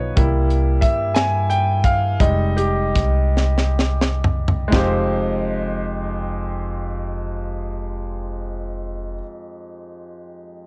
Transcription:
0, 0, Header, 1, 4, 480
1, 0, Start_track
1, 0, Key_signature, -4, "minor"
1, 0, Tempo, 657895
1, 125, Time_signature, 6, 3, 24, 8
1, 1089, Tempo, 706714
1, 1569, Tempo, 758534
1, 2049, Tempo, 831025
1, 2529, Tempo, 934579
1, 3009, Tempo, 998336
1, 5866, End_track
2, 0, Start_track
2, 0, Title_t, "Grand piano"
2, 0, Program_c, 0, 0
2, 0, Control_c, 0, 64, 127
2, 0, Note_on_c, 0, 53, 42
2, 0, Note_on_c, 0, 59, 44
2, 0, Note_on_c, 0, 63, 53
2, 0, Note_on_c, 0, 71, 67
2, 0, Note_on_c, 0, 73, 70
2, 0, Note_on_c, 0, 75, 90
2, 112, Note_on_c, 0, 55, 55
2, 121, Note_on_c, 0, 58, 53
2, 123, Note_on_c, 0, 64, 64
2, 133, Control_c, 0, 64, 0
2, 134, Note_off_c, 0, 73, 0
2, 135, Note_off_c, 0, 63, 0
2, 138, Note_off_c, 0, 75, 0
2, 140, Note_off_c, 0, 53, 0
2, 140, Note_off_c, 0, 71, 0
2, 141, Note_off_c, 0, 59, 0
2, 269, Control_c, 0, 64, 127
2, 592, Note_on_c, 0, 76, 82
2, 806, Note_off_c, 0, 55, 0
2, 810, Note_off_c, 0, 58, 0
2, 811, Note_off_c, 0, 64, 0
2, 820, Note_off_c, 0, 76, 0
2, 835, Note_on_c, 0, 80, 104
2, 1092, Note_off_c, 0, 80, 0
2, 1092, Note_on_c, 0, 79, 89
2, 1329, Note_on_c, 0, 77, 93
2, 1333, Note_off_c, 0, 79, 0
2, 1566, Note_on_c, 0, 55, 56
2, 1570, Note_on_c, 0, 56, 51
2, 1571, Note_on_c, 0, 75, 97
2, 1575, Note_on_c, 0, 63, 66
2, 1577, Note_off_c, 0, 77, 0
2, 1577, Control_c, 0, 64, 0
2, 1699, Control_c, 0, 64, 127
2, 1801, Note_on_c, 0, 67, 78
2, 1811, Note_off_c, 0, 75, 0
2, 2258, Note_off_c, 0, 55, 0
2, 2259, Note_off_c, 0, 56, 0
2, 2262, Note_off_c, 0, 63, 0
2, 2986, Note_on_c, 0, 56, 76
2, 2987, Note_off_c, 0, 67, 0
2, 2997, Note_on_c, 0, 63, 71
2, 3007, Note_on_c, 0, 41, 70
2, 3009, Note_on_c, 0, 65, 69
2, 3014, Control_c, 0, 64, 0
2, 3017, Note_on_c, 0, 67, 71
2, 3026, Note_on_c, 0, 72, 86
2, 3098, Control_c, 0, 64, 127
2, 5132, Note_off_c, 0, 56, 0
2, 5143, Note_off_c, 0, 63, 0
2, 5152, Note_off_c, 0, 41, 0
2, 5154, Note_off_c, 0, 65, 0
2, 5162, Note_off_c, 0, 67, 0
2, 5171, Note_off_c, 0, 72, 0
2, 5866, End_track
3, 0, Start_track
3, 0, Title_t, "Upright bass"
3, 0, Program_c, 1, 32
3, 0, Note_on_c, 1, 35, 84
3, 97, Note_off_c, 1, 35, 0
3, 124, Note_on_c, 1, 36, 96
3, 569, Note_off_c, 1, 36, 0
3, 598, Note_on_c, 1, 43, 81
3, 1540, Note_off_c, 1, 43, 0
3, 1569, Note_on_c, 1, 29, 103
3, 2023, Note_off_c, 1, 29, 0
3, 2045, Note_on_c, 1, 36, 90
3, 2986, Note_off_c, 1, 36, 0
3, 3010, Note_on_c, 1, 29, 83
3, 5154, Note_off_c, 1, 29, 0
3, 5866, End_track
4, 0, Start_track
4, 0, Title_t, "Drums"
4, 123, Note_on_c, 9, 42, 83
4, 124, Note_on_c, 9, 36, 100
4, 196, Note_off_c, 9, 42, 0
4, 197, Note_off_c, 9, 36, 0
4, 367, Note_on_c, 9, 42, 41
4, 440, Note_off_c, 9, 42, 0
4, 599, Note_on_c, 9, 36, 81
4, 600, Note_on_c, 9, 42, 71
4, 672, Note_off_c, 9, 36, 0
4, 673, Note_off_c, 9, 42, 0
4, 844, Note_on_c, 9, 42, 78
4, 848, Note_on_c, 9, 38, 98
4, 917, Note_off_c, 9, 42, 0
4, 921, Note_off_c, 9, 38, 0
4, 1097, Note_on_c, 9, 42, 55
4, 1165, Note_off_c, 9, 42, 0
4, 1324, Note_on_c, 9, 36, 82
4, 1324, Note_on_c, 9, 42, 76
4, 1392, Note_off_c, 9, 36, 0
4, 1392, Note_off_c, 9, 42, 0
4, 1569, Note_on_c, 9, 36, 115
4, 1571, Note_on_c, 9, 42, 91
4, 1633, Note_off_c, 9, 36, 0
4, 1634, Note_off_c, 9, 42, 0
4, 1808, Note_on_c, 9, 42, 50
4, 1871, Note_off_c, 9, 42, 0
4, 2046, Note_on_c, 9, 42, 72
4, 2047, Note_on_c, 9, 36, 81
4, 2054, Note_on_c, 9, 38, 27
4, 2104, Note_off_c, 9, 42, 0
4, 2105, Note_off_c, 9, 36, 0
4, 2112, Note_off_c, 9, 38, 0
4, 2286, Note_on_c, 9, 38, 53
4, 2344, Note_off_c, 9, 38, 0
4, 2405, Note_on_c, 9, 38, 53
4, 2463, Note_off_c, 9, 38, 0
4, 2528, Note_on_c, 9, 38, 70
4, 2580, Note_off_c, 9, 38, 0
4, 2644, Note_on_c, 9, 38, 76
4, 2695, Note_off_c, 9, 38, 0
4, 2761, Note_on_c, 9, 43, 88
4, 2813, Note_off_c, 9, 43, 0
4, 2884, Note_on_c, 9, 43, 84
4, 2935, Note_off_c, 9, 43, 0
4, 3009, Note_on_c, 9, 36, 99
4, 3012, Note_on_c, 9, 38, 98
4, 3057, Note_off_c, 9, 36, 0
4, 3060, Note_off_c, 9, 38, 0
4, 5866, End_track
0, 0, End_of_file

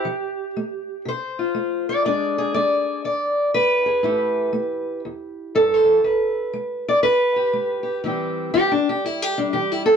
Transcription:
0, 0, Header, 1, 2, 480
1, 0, Start_track
1, 0, Key_signature, 0, "minor"
1, 0, Tempo, 500000
1, 32, Time_signature, 4, 2, 24, 8
1, 9567, End_track
2, 0, Start_track
2, 0, Title_t, "Steel-string acoustic guitar"
2, 0, Program_c, 0, 25
2, 0, Note_on_c, 0, 67, 94
2, 48, Note_on_c, 0, 53, 72
2, 484, Note_off_c, 0, 53, 0
2, 543, Note_on_c, 0, 57, 60
2, 971, Note_off_c, 0, 57, 0
2, 1007, Note_off_c, 0, 67, 0
2, 1011, Note_on_c, 0, 48, 63
2, 1042, Note_on_c, 0, 72, 87
2, 1333, Note_on_c, 0, 65, 43
2, 1446, Note_off_c, 0, 48, 0
2, 1483, Note_on_c, 0, 57, 61
2, 1795, Note_off_c, 0, 72, 0
2, 1815, Note_on_c, 0, 74, 83
2, 1922, Note_off_c, 0, 57, 0
2, 1952, Note_off_c, 0, 65, 0
2, 1961, Note_off_c, 0, 74, 0
2, 1967, Note_on_c, 0, 40, 74
2, 1972, Note_on_c, 0, 56, 46
2, 1975, Note_on_c, 0, 62, 49
2, 1975, Note_on_c, 0, 74, 85
2, 1984, Note_on_c, 0, 68, 49
2, 2267, Note_off_c, 0, 68, 0
2, 2287, Note_on_c, 0, 68, 80
2, 2403, Note_off_c, 0, 40, 0
2, 2430, Note_off_c, 0, 74, 0
2, 2440, Note_off_c, 0, 56, 0
2, 2442, Note_on_c, 0, 74, 89
2, 2452, Note_on_c, 0, 56, 67
2, 2886, Note_off_c, 0, 56, 0
2, 2913, Note_off_c, 0, 74, 0
2, 2920, Note_on_c, 0, 40, 57
2, 2928, Note_on_c, 0, 74, 79
2, 2930, Note_off_c, 0, 68, 0
2, 3360, Note_off_c, 0, 40, 0
2, 3398, Note_off_c, 0, 74, 0
2, 3402, Note_on_c, 0, 56, 62
2, 3402, Note_on_c, 0, 71, 94
2, 3705, Note_on_c, 0, 68, 46
2, 3841, Note_off_c, 0, 56, 0
2, 3858, Note_off_c, 0, 68, 0
2, 3861, Note_off_c, 0, 62, 0
2, 3868, Note_on_c, 0, 45, 71
2, 3878, Note_on_c, 0, 57, 48
2, 3878, Note_on_c, 0, 64, 47
2, 3890, Note_on_c, 0, 67, 47
2, 4314, Note_off_c, 0, 45, 0
2, 4334, Note_off_c, 0, 57, 0
2, 4346, Note_on_c, 0, 57, 65
2, 4792, Note_off_c, 0, 57, 0
2, 4836, Note_off_c, 0, 71, 0
2, 4848, Note_on_c, 0, 40, 60
2, 5283, Note_off_c, 0, 40, 0
2, 5326, Note_on_c, 0, 43, 63
2, 5328, Note_off_c, 0, 67, 0
2, 5332, Note_on_c, 0, 69, 94
2, 5508, Note_on_c, 0, 72, 82
2, 5610, Note_off_c, 0, 43, 0
2, 5614, Note_on_c, 0, 41, 62
2, 5793, Note_off_c, 0, 41, 0
2, 5797, Note_off_c, 0, 72, 0
2, 5799, Note_on_c, 0, 40, 75
2, 5801, Note_off_c, 0, 69, 0
2, 5801, Note_on_c, 0, 71, 46
2, 6239, Note_off_c, 0, 40, 0
2, 6273, Note_on_c, 0, 56, 68
2, 6595, Note_off_c, 0, 71, 0
2, 6610, Note_on_c, 0, 74, 89
2, 6638, Note_off_c, 0, 64, 0
2, 6716, Note_off_c, 0, 56, 0
2, 6744, Note_off_c, 0, 74, 0
2, 6748, Note_on_c, 0, 71, 103
2, 6758, Note_on_c, 0, 40, 60
2, 7067, Note_on_c, 0, 67, 44
2, 7199, Note_off_c, 0, 40, 0
2, 7232, Note_on_c, 0, 56, 62
2, 7506, Note_off_c, 0, 67, 0
2, 7517, Note_on_c, 0, 67, 47
2, 7675, Note_off_c, 0, 56, 0
2, 7684, Note_off_c, 0, 67, 0
2, 7710, Note_off_c, 0, 71, 0
2, 7716, Note_on_c, 0, 45, 69
2, 7716, Note_on_c, 0, 52, 48
2, 7722, Note_on_c, 0, 55, 49
2, 7730, Note_on_c, 0, 60, 47
2, 7738, Note_on_c, 0, 67, 48
2, 8158, Note_off_c, 0, 45, 0
2, 8192, Note_off_c, 0, 67, 0
2, 8196, Note_off_c, 0, 52, 0
2, 8196, Note_on_c, 0, 67, 97
2, 8200, Note_on_c, 0, 52, 62
2, 8354, Note_off_c, 0, 67, 0
2, 8363, Note_off_c, 0, 60, 0
2, 8367, Note_on_c, 0, 62, 85
2, 8520, Note_off_c, 0, 62, 0
2, 8537, Note_on_c, 0, 67, 85
2, 8640, Note_off_c, 0, 52, 0
2, 8683, Note_on_c, 0, 40, 61
2, 8694, Note_off_c, 0, 67, 0
2, 8694, Note_on_c, 0, 64, 84
2, 8854, Note_off_c, 0, 64, 0
2, 8854, Note_on_c, 0, 67, 79
2, 9003, Note_off_c, 0, 67, 0
2, 9003, Note_on_c, 0, 62, 81
2, 9005, Note_off_c, 0, 55, 0
2, 9009, Note_on_c, 0, 55, 45
2, 9122, Note_off_c, 0, 40, 0
2, 9149, Note_on_c, 0, 67, 79
2, 9158, Note_off_c, 0, 62, 0
2, 9158, Note_on_c, 0, 52, 60
2, 9328, Note_off_c, 0, 67, 0
2, 9328, Note_on_c, 0, 64, 79
2, 9458, Note_on_c, 0, 60, 51
2, 9459, Note_off_c, 0, 64, 0
2, 9463, Note_on_c, 0, 69, 94
2, 9567, Note_off_c, 0, 52, 0
2, 9567, Note_off_c, 0, 55, 0
2, 9567, Note_off_c, 0, 60, 0
2, 9567, Note_off_c, 0, 69, 0
2, 9567, End_track
0, 0, End_of_file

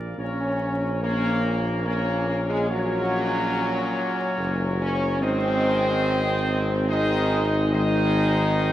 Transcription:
0, 0, Header, 1, 5, 480
1, 0, Start_track
1, 0, Tempo, 839161
1, 110, Time_signature, 3, 2, 24, 8
1, 4991, End_track
2, 0, Start_track
2, 0, Title_t, "Trumpet section"
2, 0, Program_c, 0, 61
2, 0, Note_on_c, 0, 70, 98
2, 0, Note_on_c, 0, 74, 99
2, 87, Note_off_c, 0, 70, 0
2, 88, Note_off_c, 0, 74, 0
2, 108, Note_on_c, 0, 70, 92
2, 111, Note_on_c, 0, 73, 89
2, 563, Note_off_c, 0, 70, 0
2, 565, Note_off_c, 0, 73, 0
2, 585, Note_on_c, 0, 70, 110
2, 586, Note_on_c, 0, 73, 108
2, 1040, Note_off_c, 0, 70, 0
2, 1040, Note_off_c, 0, 73, 0
2, 1064, Note_on_c, 0, 70, 105
2, 1067, Note_on_c, 0, 73, 110
2, 1521, Note_off_c, 0, 70, 0
2, 1522, Note_off_c, 0, 73, 0
2, 1547, Note_on_c, 0, 70, 105
2, 1547, Note_on_c, 0, 73, 107
2, 2961, Note_off_c, 0, 70, 0
2, 2961, Note_off_c, 0, 73, 0
2, 2981, Note_on_c, 0, 75, 127
2, 2984, Note_on_c, 0, 72, 124
2, 3843, Note_off_c, 0, 72, 0
2, 3843, Note_off_c, 0, 75, 0
2, 3941, Note_on_c, 0, 72, 125
2, 3941, Note_on_c, 0, 75, 127
2, 4404, Note_off_c, 0, 72, 0
2, 4404, Note_off_c, 0, 75, 0
2, 4421, Note_on_c, 0, 72, 127
2, 4422, Note_on_c, 0, 75, 127
2, 4991, Note_off_c, 0, 72, 0
2, 4991, Note_off_c, 0, 75, 0
2, 4991, End_track
3, 0, Start_track
3, 0, Title_t, "French horn section"
3, 0, Program_c, 1, 60
3, 112, Note_on_c, 1, 61, 110
3, 565, Note_off_c, 1, 61, 0
3, 588, Note_on_c, 1, 58, 126
3, 1041, Note_off_c, 1, 58, 0
3, 1062, Note_on_c, 1, 58, 114
3, 1285, Note_off_c, 1, 58, 0
3, 1300, Note_on_c, 1, 58, 117
3, 1355, Note_off_c, 1, 58, 0
3, 1425, Note_on_c, 1, 56, 126
3, 1536, Note_off_c, 1, 56, 0
3, 1546, Note_on_c, 1, 54, 123
3, 2722, Note_off_c, 1, 54, 0
3, 2753, Note_on_c, 1, 61, 127
3, 2970, Note_off_c, 1, 61, 0
3, 2984, Note_on_c, 1, 60, 127
3, 3921, Note_off_c, 1, 60, 0
3, 3946, Note_on_c, 1, 63, 127
3, 4424, Note_off_c, 1, 63, 0
3, 4431, Note_on_c, 1, 63, 127
3, 4991, Note_off_c, 1, 63, 0
3, 4991, End_track
4, 0, Start_track
4, 0, Title_t, "Trombone section"
4, 0, Program_c, 2, 61
4, 0, Note_on_c, 2, 46, 102
4, 0, Note_on_c, 2, 58, 99
4, 86, Note_off_c, 2, 46, 0
4, 86, Note_off_c, 2, 58, 0
4, 107, Note_on_c, 2, 46, 98
4, 109, Note_on_c, 2, 61, 106
4, 563, Note_off_c, 2, 46, 0
4, 576, Note_off_c, 2, 61, 0
4, 581, Note_on_c, 2, 46, 95
4, 583, Note_on_c, 2, 61, 90
4, 1037, Note_off_c, 2, 46, 0
4, 1039, Note_off_c, 2, 61, 0
4, 1058, Note_on_c, 2, 46, 109
4, 1058, Note_on_c, 2, 61, 105
4, 1518, Note_off_c, 2, 46, 0
4, 1518, Note_off_c, 2, 61, 0
4, 1541, Note_on_c, 2, 46, 125
4, 1543, Note_on_c, 2, 61, 126
4, 2879, Note_off_c, 2, 46, 0
4, 2879, Note_off_c, 2, 61, 0
4, 2976, Note_on_c, 2, 56, 120
4, 2977, Note_on_c, 2, 51, 127
4, 3917, Note_off_c, 2, 56, 0
4, 3918, Note_off_c, 2, 51, 0
4, 3936, Note_on_c, 2, 51, 122
4, 3937, Note_on_c, 2, 56, 127
4, 4402, Note_off_c, 2, 51, 0
4, 4402, Note_off_c, 2, 56, 0
4, 4425, Note_on_c, 2, 51, 127
4, 4426, Note_on_c, 2, 56, 127
4, 4991, Note_off_c, 2, 51, 0
4, 4991, Note_off_c, 2, 56, 0
4, 4991, End_track
5, 0, Start_track
5, 0, Title_t, "Tuba"
5, 0, Program_c, 3, 58
5, 0, Note_on_c, 3, 34, 83
5, 86, Note_off_c, 3, 34, 0
5, 104, Note_on_c, 3, 34, 107
5, 2325, Note_off_c, 3, 34, 0
5, 2504, Note_on_c, 3, 30, 112
5, 2981, Note_on_c, 3, 32, 127
5, 2989, Note_off_c, 3, 30, 0
5, 4991, Note_off_c, 3, 32, 0
5, 4991, End_track
0, 0, End_of_file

